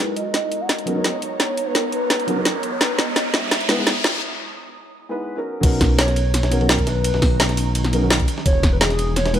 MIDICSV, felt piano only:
0, 0, Header, 1, 2, 480
1, 0, Start_track
1, 0, Key_signature, 5, "major"
1, 0, Tempo, 352941
1, 1901, Time_signature, 4, 2, 24, 8
1, 12779, End_track
2, 0, Start_track
2, 0, Title_t, "Felt piano"
2, 0, Program_c, 0, 0
2, 1163, Note_on_c, 0, 54, 77
2, 1169, Note_on_c, 0, 59, 68
2, 1177, Note_on_c, 0, 61, 70
2, 1183, Note_on_c, 0, 63, 66
2, 1193, Note_on_c, 0, 70, 80
2, 1268, Note_off_c, 0, 54, 0
2, 1271, Note_off_c, 0, 59, 0
2, 1275, Note_off_c, 0, 61, 0
2, 1278, Note_off_c, 0, 63, 0
2, 1283, Note_off_c, 0, 70, 0
2, 1289, Note_on_c, 0, 54, 68
2, 1296, Note_on_c, 0, 59, 66
2, 1302, Note_on_c, 0, 61, 63
2, 1312, Note_on_c, 0, 63, 65
2, 1319, Note_on_c, 0, 70, 75
2, 1426, Note_off_c, 0, 54, 0
2, 1430, Note_off_c, 0, 59, 0
2, 1433, Note_off_c, 0, 61, 0
2, 1438, Note_off_c, 0, 63, 0
2, 1441, Note_off_c, 0, 70, 0
2, 3086, Note_on_c, 0, 54, 73
2, 3092, Note_on_c, 0, 59, 73
2, 3100, Note_on_c, 0, 61, 72
2, 3106, Note_on_c, 0, 63, 68
2, 3114, Note_on_c, 0, 70, 84
2, 3189, Note_off_c, 0, 54, 0
2, 3193, Note_off_c, 0, 59, 0
2, 3197, Note_off_c, 0, 61, 0
2, 3199, Note_off_c, 0, 63, 0
2, 3204, Note_off_c, 0, 70, 0
2, 3212, Note_on_c, 0, 54, 73
2, 3217, Note_on_c, 0, 59, 67
2, 3226, Note_on_c, 0, 61, 64
2, 3231, Note_on_c, 0, 63, 69
2, 3239, Note_on_c, 0, 70, 84
2, 3348, Note_off_c, 0, 54, 0
2, 3350, Note_off_c, 0, 59, 0
2, 3355, Note_off_c, 0, 61, 0
2, 3357, Note_off_c, 0, 63, 0
2, 3361, Note_off_c, 0, 70, 0
2, 5007, Note_on_c, 0, 56, 79
2, 5015, Note_on_c, 0, 59, 73
2, 5022, Note_on_c, 0, 63, 71
2, 5029, Note_on_c, 0, 64, 72
2, 5038, Note_on_c, 0, 71, 88
2, 5105, Note_off_c, 0, 56, 0
2, 5114, Note_off_c, 0, 59, 0
2, 5118, Note_off_c, 0, 63, 0
2, 5121, Note_off_c, 0, 64, 0
2, 5126, Note_off_c, 0, 71, 0
2, 5126, Note_on_c, 0, 56, 75
2, 5136, Note_on_c, 0, 59, 71
2, 5143, Note_on_c, 0, 63, 71
2, 5150, Note_on_c, 0, 64, 70
2, 5155, Note_on_c, 0, 71, 84
2, 5265, Note_off_c, 0, 56, 0
2, 5270, Note_off_c, 0, 59, 0
2, 5273, Note_off_c, 0, 63, 0
2, 5277, Note_off_c, 0, 64, 0
2, 5280, Note_off_c, 0, 71, 0
2, 6924, Note_on_c, 0, 56, 75
2, 6931, Note_on_c, 0, 59, 71
2, 6937, Note_on_c, 0, 63, 68
2, 6945, Note_on_c, 0, 64, 68
2, 6953, Note_on_c, 0, 71, 84
2, 7269, Note_off_c, 0, 56, 0
2, 7272, Note_off_c, 0, 59, 0
2, 7275, Note_off_c, 0, 63, 0
2, 7279, Note_off_c, 0, 64, 0
2, 7283, Note_off_c, 0, 71, 0
2, 7289, Note_on_c, 0, 54, 75
2, 7296, Note_on_c, 0, 59, 71
2, 7304, Note_on_c, 0, 61, 71
2, 7309, Note_on_c, 0, 63, 71
2, 7316, Note_on_c, 0, 70, 85
2, 7604, Note_off_c, 0, 54, 0
2, 7621, Note_off_c, 0, 59, 0
2, 7624, Note_on_c, 0, 54, 97
2, 7634, Note_off_c, 0, 61, 0
2, 7642, Note_on_c, 0, 59, 93
2, 7648, Note_off_c, 0, 63, 0
2, 7652, Note_off_c, 0, 70, 0
2, 7655, Note_on_c, 0, 61, 91
2, 7668, Note_on_c, 0, 63, 95
2, 7684, Note_on_c, 0, 70, 109
2, 8363, Note_off_c, 0, 54, 0
2, 8372, Note_off_c, 0, 59, 0
2, 8378, Note_off_c, 0, 61, 0
2, 8385, Note_off_c, 0, 63, 0
2, 8393, Note_off_c, 0, 70, 0
2, 8844, Note_on_c, 0, 54, 77
2, 8852, Note_on_c, 0, 59, 69
2, 8859, Note_on_c, 0, 61, 71
2, 8866, Note_on_c, 0, 63, 72
2, 8872, Note_on_c, 0, 70, 86
2, 8949, Note_off_c, 0, 54, 0
2, 8953, Note_off_c, 0, 59, 0
2, 8956, Note_off_c, 0, 61, 0
2, 8960, Note_off_c, 0, 63, 0
2, 8963, Note_off_c, 0, 70, 0
2, 8973, Note_on_c, 0, 54, 74
2, 8980, Note_on_c, 0, 59, 69
2, 8988, Note_on_c, 0, 61, 69
2, 8995, Note_on_c, 0, 63, 68
2, 9000, Note_on_c, 0, 70, 81
2, 9108, Note_off_c, 0, 54, 0
2, 9112, Note_off_c, 0, 59, 0
2, 9116, Note_off_c, 0, 61, 0
2, 9119, Note_off_c, 0, 63, 0
2, 9122, Note_off_c, 0, 70, 0
2, 10769, Note_on_c, 0, 54, 75
2, 10777, Note_on_c, 0, 59, 72
2, 10783, Note_on_c, 0, 61, 71
2, 10791, Note_on_c, 0, 63, 75
2, 10797, Note_on_c, 0, 70, 85
2, 10871, Note_off_c, 0, 54, 0
2, 10875, Note_off_c, 0, 59, 0
2, 10878, Note_off_c, 0, 61, 0
2, 10882, Note_off_c, 0, 63, 0
2, 10885, Note_off_c, 0, 70, 0
2, 10896, Note_on_c, 0, 54, 76
2, 10902, Note_on_c, 0, 59, 67
2, 10911, Note_on_c, 0, 61, 68
2, 10916, Note_on_c, 0, 63, 68
2, 10925, Note_on_c, 0, 70, 85
2, 11030, Note_off_c, 0, 54, 0
2, 11033, Note_off_c, 0, 59, 0
2, 11037, Note_off_c, 0, 61, 0
2, 11040, Note_off_c, 0, 63, 0
2, 11044, Note_off_c, 0, 70, 0
2, 12690, Note_on_c, 0, 56, 78
2, 12698, Note_on_c, 0, 59, 74
2, 12704, Note_on_c, 0, 63, 73
2, 12711, Note_on_c, 0, 64, 74
2, 12718, Note_on_c, 0, 71, 88
2, 12779, Note_off_c, 0, 56, 0
2, 12779, Note_off_c, 0, 59, 0
2, 12779, Note_off_c, 0, 63, 0
2, 12779, Note_off_c, 0, 64, 0
2, 12779, Note_off_c, 0, 71, 0
2, 12779, End_track
0, 0, End_of_file